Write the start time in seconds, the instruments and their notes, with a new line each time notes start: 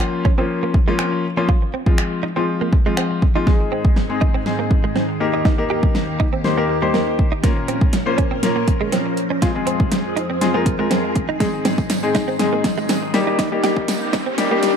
Already playing: grand piano F3 A#3 C#4 F4
0.00 finger snap, muted clean electric guitar stroke
0.25 clean electric guitar C#4, kick
0.38 grand piano F3 A#3 C#4 F4, clean electric guitar C4
0.63 clean electric guitar A#3
0.74 muted clean electric guitar stroke, kick
0.88 grand piano F3 A#3 C#4 F4, clean electric guitar G#3
0.99 clean electric guitar C4, finger snap
1.13 muted clean electric guitar stroke
1.37 grand piano F3 A#3 C#4 F4, clean electric guitar C#4
1.49 clean electric guitar F4, kick
1.62 muted clean electric guitar stroke
1.74 clean electric guitar C4
1.86 grand piano F3 G#3 C4 F4, kick
1.98 finger snap, muted clean electric guitar stroke
2.23 clean electric guitar D#4
2.36 grand piano F3 G#3 C4 F4, clean electric guitar C4
2.61 clean electric guitar A#3
2.73 muted clean electric guitar stroke, kick
2.86 grand piano F3 G#3 C4 F4, clean electric guitar G#3
2.97 clean electric guitar C4, finger snap
3.11 muted clean electric guitar stroke
3.22 kick
3.35 grand piano F3 G#3 C4 F4, clean electric guitar D#4
3.47 string machine G#2 D#3 C4 G#4, grand piano G#3 C4 D#4 G#4, clean electric guitar G#3, kick, snare
3.60 muted clean electric guitar stroke
3.72 clean electric guitar C4
3.85 kick
3.96 muted clean electric guitar stroke, snare
4.09 grand piano G#3 C4 D#4 G#4
4.21 clean electric guitar D#4, kick
4.34 clean electric guitar C4
4.46 grand piano G#3 C4 D#4 G#4, snare
4.59 clean electric guitar A#3
4.71 muted clean electric guitar stroke, kick
4.84 clean electric guitar G#3
4.96 clean electric guitar C4, snare
5.09 muted clean electric guitar stroke
5.20 string machine D#2 A#3 G4, grand piano A#3 D#4 G4 A#4
5.34 clean electric guitar D#4
5.45 clean electric guitar D#4, kick, snare
5.58 grand piano A#3 D#4 G4 A#4, muted clean electric guitar stroke
5.70 clean electric guitar G4
5.83 kick
5.95 muted clean electric guitar stroke, snare
6.20 clean electric guitar D#4, kick
6.33 clean electric guitar C4
6.44 grand piano A#3 D#4 G4 C5, snare
6.57 grand piano A#3 D#4 G4 A#4, clean electric guitar A#3
6.69 muted clean electric guitar stroke
6.82 clean electric guitar G3, grand piano A#3 D#4 G4 C5
6.94 clean electric guitar A#3, snare
7.07 muted clean electric guitar stroke
7.19 kick
7.32 clean electric guitar D#4
7.43 string machine A#2 F3 C#4 A#4, grand piano A#3 C#4 F4 A#4, clean electric guitar A#3, kick, snare, closed hi-hat
7.57 muted clean electric guitar stroke
7.68 clean electric guitar C4, closed hi-hat
7.81 kick
7.93 muted clean electric guitar stroke, snare, closed hi-hat
8.06 grand piano A#3 C#4 F4 C5
8.18 clean electric guitar C#4, kick, closed hi-hat
8.31 clean electric guitar C4
8.43 grand piano A#3 C#4 F4 A#4, snare, closed hi-hat
8.56 clean electric guitar A#3
8.68 muted clean electric guitar stroke, kick, closed hi-hat
8.81 clean electric guitar G#3
8.92 clean electric guitar C4, snare, closed hi-hat
9.06 muted clean electric guitar stroke
9.17 closed hi-hat
9.30 clean electric guitar C#4
9.42 string machine F2 C4 G#4, grand piano G#3 C4 F4 G#4, clean electric guitar F4, kick, snare, closed hi-hat
9.55 grand piano G#3 C4 F4 G#4, muted clean electric guitar stroke
9.67 clean electric guitar C4, closed hi-hat
9.80 kick
9.92 muted clean electric guitar stroke, snare, closed hi-hat
10.16 clean electric guitar D#4, closed hi-hat
10.30 clean electric guitar C4
10.41 grand piano G#3 C4 F4 G#4, snare, closed hi-hat
10.54 grand piano G#3 C4 F4 A#4, clean electric guitar A#3
10.66 muted clean electric guitar stroke, kick, closed hi-hat
10.79 grand piano G#3 C4 F4 A#4, clean electric guitar G#3
10.91 clean electric guitar C4, snare, closed hi-hat
11.04 muted clean electric guitar stroke
11.16 kick, closed hi-hat
11.29 clean electric guitar D#4
11.40 string machine G#2 D#3, grand piano G#3 C4 D#4 G#4, clean electric guitar G#3, kick, snare, closed hi-hat, tambourine, riser
11.53 muted clean electric guitar stroke
11.65 clean electric guitar C4, snare, closed hi-hat, tambourine
11.78 kick, tambourine
11.90 muted clean electric guitar stroke, snare, closed hi-hat, tambourine
12.03 grand piano G#3 C4 D#4 G#4, tambourine
12.15 clean electric guitar D#4, kick, snare, closed hi-hat, tambourine
12.28 clean electric guitar C4, tambourine
12.39 grand piano G#3 C4 D#4 G#4, snare, closed hi-hat, tambourine
12.53 clean electric guitar A#3
12.64 muted clean electric guitar stroke, kick, snare, closed hi-hat, tambourine
12.77 clean electric guitar G#3, tambourine
12.89 clean electric guitar C4, snare, closed hi-hat, tambourine
13.03 muted clean electric guitar stroke
13.14 string machine D#2 A#3 G4, grand piano G3 A#3 D#4 G4, snare, closed hi-hat, tambourine
13.27 clean electric guitar D#4
13.39 clean electric guitar D#4, kick, snare, closed hi-hat, tambourine
13.52 grand piano G3 A#3 D#4 G4, muted clean electric guitar stroke
13.64 clean electric guitar G4, snare, closed hi-hat, tambourine
13.77 kick
13.88 muted clean electric guitar stroke, snare, closed hi-hat, tambourine
14.02 tambourine
14.13 clean electric guitar D#4, kick, snare, closed hi-hat, tambourine
14.26 clean electric guitar C4
14.38 grand piano G3 A#3 D#4 G4, snare, closed hi-hat, tambourine
14.51 grand piano G3 A#3 D#4 G4, clean electric guitar A#3
14.63 muted clean electric guitar stroke, snare, closed hi-hat, tambourine